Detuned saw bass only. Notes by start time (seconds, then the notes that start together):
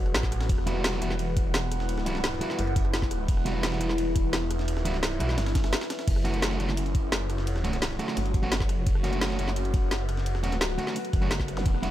Already playing: F#1
0.14 A1
0.49 E1
1.02 E1
2.59 F#1
3.28 E1
3.81 E1
4.81 D1
5.03 C1
5.20 B1
5.38 G1
6.08 F#1
6.60 F#1
8.17 G1
8.65 F#1
8.87 F#1
9.39 F#1
10.39 E1
10.61 D1
11.13 F#1
11.66 E1